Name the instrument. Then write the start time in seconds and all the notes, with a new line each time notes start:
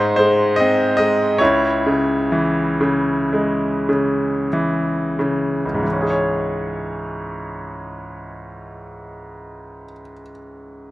grand piano
Already playing: G#2 D#4 C5
0.16 G#3 C5
0.56 C4 D#5
0.97 G#3 D#5
1.38 C#2 E4 C#5
1.86 C#3
2.32 E3
2.81 C#3
3.33 G#3
3.89 C#3
4.53 E3
5.19 C#3
5.65 C#2
5.74 G#2
5.83 E3
5.92 C#4
6.01 G#4
6.10 C#5